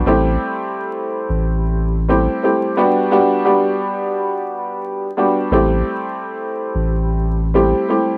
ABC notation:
X:1
M:4/4
L:1/16
Q:"Swing 16ths" 1/4=88
K:Ador
V:1 name="Upright piano"
[G,A,CEG]8- [G,A,CEG]3 z [G,A,CEG]2 [G,A,CEG]2 | [G,B,DFG]2 [G,B,DFG]2 [G,B,DFG]8- [G,B,DFG]2 [G,B,DFG]2 | [G,A,CEG]8- [G,A,CEG]3 z [G,A,CEG]2 [G,A,CEG]2 |]
V:2 name="Sub bass" clef=bass
A,,,2 z4 z A,,,6 z3 | z16 | A,,,2 z4 z A,,,6 z3 |]